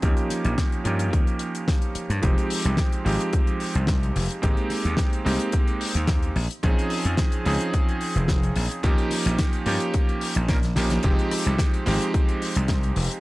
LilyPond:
<<
  \new Staff \with { instrumentName = "Electric grand piano" } { \time 4/4 \key f \minor \tempo 4 = 109 <f bes des' ees' g'>4. <f bes des' ees' g'>2~ <f bes des' ees' g'>8 | <f aes c' ees' g'>4. <f aes c' ees' g'>2~ <f aes c' ees' g'>8 | <aes bes c' ees' g'>4. <aes bes c' ees' g'>2 r8 | <f c' des' ees' aes'>4. <f c' des' ees' aes'>2~ <f c' des' ees' aes'>8 |
<f bes des' ees' g'>4. <f bes des' ees' g'>4. <f bes des' ees' bes'>8 <f bes des' ees' g'>8 | <f aes c' ees' g'>4. <f aes c' ees' g'>2~ <f aes c' ees' g'>8 | }
  \new Staff \with { instrumentName = "Slap bass" } { \clef bass \time 4/4 \key f \minor ees,16 r8 bes,,16 r8 g,8 ees,16 r4. g,16 | f,,16 r8 c,16 r8 aes,,16 r4 c,8. f,,16 r16 | aes,,16 r8 ees,16 r8 c,16 r4 ees,8. bes,,16 r16 | bes,,16 r8 f,16 r8 des,16 r4 f,,8. bes,,16 r16 |
ees,16 r8 bes,,16 r8 g,16 r4 bes,,8. bes,,16 r16 | f,,16 r8 c,16 r8 aes,,16 r4 c,8. f,,16 r16 | }
  \new DrumStaff \with { instrumentName = "Drums" } \drummode { \time 4/4 <hh bd>16 hh16 <hh sn>16 hh16 <hh bd sn>16 hh16 hh16 hh16 <hh bd>16 hh16 hh16 hh16 <hh bd sn>16 hh16 hh16 hh16 | <hh bd>16 hh16 hho16 hh16 <hh bd sn>16 hh16 hho16 hh16 <hh bd>16 hh16 hho16 hh16 <hh bd sn>16 hh16 hho16 hh16 | <hh bd>16 hh16 <hho sn>16 hh16 <hh bd sn>16 hh16 hho16 hh16 <hh bd>16 hh16 hho16 hh16 <hh bd sn>16 hh16 hho16 hh16 | <hh bd>16 hh16 hho16 hh16 <hh bd sn>16 hh16 hho16 hh16 <hh bd>16 hh16 hho16 hh16 <hh bd sn>16 hh16 hho16 hh16 |
<hh bd>16 hh16 <hho sn>16 hh16 <hh bd sn>16 hh16 hho16 hh16 <hh bd>16 hh16 hho16 hh16 <hh bd sn>16 <hh sn>16 <hho sn>16 <hh sn>16 | <hh bd>16 hh16 <hho ss>16 hh16 <hh bd sn>16 hh16 <hho ss>16 hh16 <hh bd>16 hh16 hho16 hh16 <hh bd sn>16 hh16 hho16 hh16 | }
>>